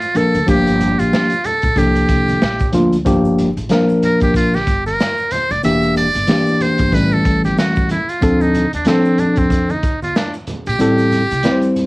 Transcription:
Already playing: F4
0.01 closed hi-hat, shaker
0.14 F3 A#3 D4 A4 A#4, closed hi-hat, low conga, shaker
0.34 D2, closed hi-hat, shaker
0.47 G1 F3 A#3 D4 G4, kick, closed hi-hat, shaker
0.67 closed hi-hat, shaker
0.81 closed hi-hat, low conga, shaker
0.99 A#1 F4, closed hi-hat, shaker
1.13 snare, shaker
1.30 closed hi-hat, shaker
1.44 A4, closed hi-hat, low conga, shaker
1.62 A#1, kick, closed hi-hat, shaker
1.76 C2 F3 A#3 D4 G4 A4, kick, closed hi-hat, shaker
1.95 closed hi-hat, shaker
2.09 C2, kick, closed hi-hat, shaker
2.28 closed hi-hat, high conga, shaker
2.41 A#1, snare, shaker
2.59 kick, closed hi-hat, shaker
2.72 D2 F3 A#3 D4 F4, closed hi-hat, low conga, shaker
2.93 closed hi-hat, shaker
3.05 G1 F3 A#3 D4 G4, kick, closed hi-hat, shaker
3.25 shaker
3.38 closed hi-hat, low conga, shaker
3.57 A1, closed hi-hat, shaker
3.69 F3 A#3 D4 A#4, snare, closed hi-hat, shaker
3.89 shaker
4.03 A#4, closed hi-hat, low conga, shaker
4.20 A#1 G4, kick, closed hi-hat, shaker
4.34 F4, kick, closed hi-hat, shaker
4.54 G4, snare, high conga, shaker
4.67 G1, kick, closed hi-hat, shaker
4.86 A#4, closed hi-hat, high conga, shaker
5.00 snare, closed hi-hat, shaker
5.18 shaker
5.31 C5, closed hi-hat, high conga, low conga, shaker
5.50 F1 D5, closed hi-hat, shaker
5.63 E1 E3 A#3 D4 G4 E5, closed hi-hat, shaker
5.82 closed hi-hat, shaker
5.96 D5, closed hi-hat, low conga, shaker
6.14 G1, closed hi-hat, shaker
6.27 E3 A#3 D4 G4, snare, closed hi-hat, shaker
6.46 closed hi-hat, shaker
6.60 C5, closed hi-hat, low conga, shaker
6.78 G1, kick, closed hi-hat, shaker
6.92 A1 E3 G3 A3 C#4 B4, kick, closed hi-hat, shaker
7.11 A4, high conga, shaker
7.25 A1, kick, closed hi-hat, shaker
7.44 G4, closed hi-hat, high conga, shaker
7.58 F#4, snare, closed hi-hat, shaker
7.76 kick, closed hi-hat, shaker
7.89 E4, closed hi-hat, high conga, low conga, shaker
8.09 F4, closed hi-hat, shaker
8.21 D2 F3 C4 D4 A4, kick, closed hi-hat, shaker
8.41 D#4, shaker
8.54 closed hi-hat, low conga, shaker
8.73 D#2 D4, closed hi-hat, shaker
8.85 F3 C4 D4 A4, snare, closed hi-hat, shaker
9.05 shaker
9.18 D4, closed hi-hat, low conga, shaker
9.36 F2 C4, kick, closed hi-hat, shaker
9.50 kick, closed hi-hat, shaker
9.69 D#4, closed hi-hat, high conga, shaker
9.83 D2, kick, closed hi-hat, shaker
10.02 F4, closed hi-hat, high conga, shaker
10.16 D4, snare, closed hi-hat, shaker
10.34 closed hi-hat, shaker
10.47 closed hi-hat, high conga, low conga, shaker
10.66 A#1 G4, closed hi-hat, shaker
10.79 A1 G3 C4 E4 G4 A4, closed hi-hat, shaker
10.98 closed hi-hat, shaker
11.12 closed hi-hat, low conga, shaker
11.31 C2, closed hi-hat, shaker
11.43 G3 C4 E4 B4, snare, closed hi-hat, shaker
11.52 C5
11.62 closed hi-hat, shaker
11.76 closed hi-hat, low conga, shaker

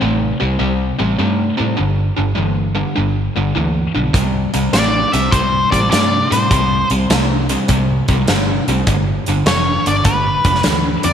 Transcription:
0.01 A1 C3 A3
0.40 C2 C3 G3
0.59 C2 C3 G3
0.99 A1 C3 G3
1.18 G2 C3 A3
1.58 A2 C3 G3
1.77 G1 G2 D3
2.17 G1 G2 D3
2.36 G1 G2 E3
2.75 G2 D3
2.96 G1 G2 D3
3.36 G1 G2 D3
3.55 D2 G2 E3
3.95 B1 G2 D3
4.14 C2 C3 G3, kick, closed hi-hat
4.54 C2 C3 G3, closed hi-hat
4.73 A1 C3 A3 D5, snare, closed hi-hat
5.12 C2 C3 G3 E5, closed hi-hat
5.31 C2 C3 G3 C5, kick, closed hi-hat
5.71 A1 C3 G3 D5, kick, closed hi-hat
5.90 G2 C3 A3 D5, snare, closed hi-hat
6.31 A2 C3 G3 C5, closed hi-hat
6.51 C2 C3 G3, kick, closed hi-hat
6.90 C2 C3 G3, closed hi-hat
7.10 C2 C3 A3, snare, closed hi-hat
7.49 C3 G3, closed hi-hat
7.68 C2 C3 G3, kick, closed hi-hat
8.08 C2 C3 G3, kick, closed hi-hat
8.28 G1 C3 A3, snare, closed hi-hat
8.68 C2 C3 G3, closed hi-hat
8.87 G1 G2 D3, kick, closed hi-hat
9.26 G1 G2 D3, closed hi-hat
9.46 F1 G2 E3 C#5, snare, closed hi-hat
9.86 G1 G2 D3 D5, closed hi-hat
10.05 G1 G2 D3 B4, kick, closed hi-hat
10.45 F1 G2 D3, kick, closed hi-hat
10.55 snare
10.63 D2 G2 E3, snare, closed hi-hat
11.03 F2 G2 D3 D5, closed hi-hat

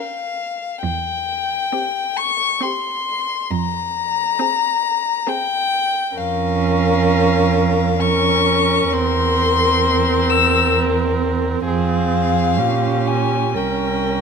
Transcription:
Already playing: C#4 A#4 F5
0.82 E2 G5
1.73 C4 G4
2.16 C#6
2.61 C4 G4 C6
3.51 F2 A#5
4.39 C4 G#4
5.27 C4 G#4 G5
6.15 F2 C#4 A#4 F5
7.99 C#4 A#4 C#6
8.91 E2 C4 A#4 C6
10.30 E6
11.65 F2 C4 G#4 F5
12.57 A#2 C#4 G4
13.07 G#5
13.54 C2 C#4 A#4 G5

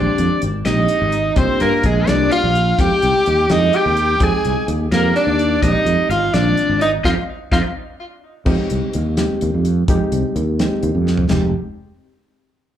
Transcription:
Already playing: D#3 G#3 C4 D4 G4 D5
0.18 F2, closed hi-hat
0.42 G#1, closed hi-hat
0.65 A#1 G#3 C4 D#4 G4 D#5, snare, closed hi-hat
0.88 closed hi-hat
1.02 G#1
1.12 closed hi-hat
1.36 C2 A#3 C4 D4 F4 G4 C5, kick, closed hi-hat
1.60 G2 A#3 A#4, closed hi-hat
1.83 A#1 G#3 G#4, kick, closed hi-hat
2.07 C2 A#3 D4 F4 G4 D5, snare, closed hi-hat
2.31 F4 F5, closed hi-hat
2.44 A#1
2.55 closed hi-hat
2.78 F2 G#3 C4 D#4 G4 G5, kick, closed hi-hat
3.02 C2, closed hi-hat
3.26 D#2, closed hi-hat
3.49 F2 G#3 C4 D#4 G#4 D#5, snare, closed hi-hat
3.73 G4 G5, closed hi-hat
3.86 D#2
3.97 closed hi-hat
4.20 F2 G#3 C4 D#4 G#4 G#5, kick, closed hi-hat
4.44 C2, closed hi-hat
4.68 D#2, closed hi-hat
4.91 F2 G#3 A#3 C4 D#4 G4 A#4, snare, closed hi-hat
5.16 D4 D5, closed hi-hat
5.27 D#2
5.39 closed hi-hat
5.62 A#1 G#3 C4 D#4 G4 D#5, kick, closed hi-hat
5.85 F2, closed hi-hat
6.09 G#1 F4 F5, closed hi-hat
6.34 A#1 D#3 G#3 C4 D4 F4 D5, snare, closed hi-hat
6.57 closed hi-hat
6.69 G#1
6.81 D#4 D#5, closed hi-hat
7.04 F2 C4 D#4 F4 C5 D#5 F5, kick, snare
7.52 F2 C4 D#4 F4 C5 D#5 F5, kick, snare
8.45 F2 G#3 C4 D#4 G4, kick, crash
8.70 C2, closed hi-hat
8.93 D#2, closed hi-hat
9.17 G#3 C4 D#4 G4, snare, closed hi-hat
9.31 muted fretless electric bass stroke
9.41 D#2, closed hi-hat
9.54 F2
9.65 closed hi-hat
9.88 F2 G#3 C4 D#4 G4, kick, closed hi-hat
10.12 C2, closed hi-hat
10.36 D#2, closed hi-hat
10.59 G#3 C4 D#4 G4, snare, closed hi-hat
10.71 muted fretless electric bass stroke
10.83 D#2, closed hi-hat
10.95 F2
11.07 snare
11.17 floor tom
11.29 F1 G#3 C4 D#4 G4, snare, floor tom, crash

